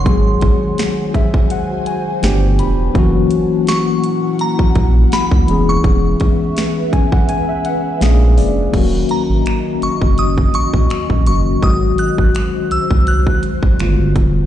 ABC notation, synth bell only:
X:1
M:4/4
L:1/16
Q:"Swing 16ths" 1/4=83
K:D#phr
V:1 name="Synth bell"
^b4- b z8 z3 | z4 c'4 a4 b3 c'- | c'4- c' z8 z3 | z2 a4 c'2 d'2 c'4 c'2 |
d'2 f'4 e'2 f'6 z2 |]